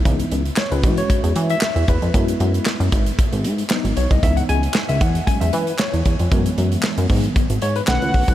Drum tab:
HH |xxxx-xxxxxxx-xxx|xxxx-xxxxxxx-xxx|xxxx-xxxxxxx-xxx|xxxx-xoxxxxx-xox|
CP |----x-------x---|----x-------x---|----x-------x---|----x-------x---|
SD |----o-------o---|----o-------o---|----o-------o---|----o-------o---|
BD |o-----o-o-----o-|o-----o-o------o|o-----o-o-----o-|o-----o-o-----oo|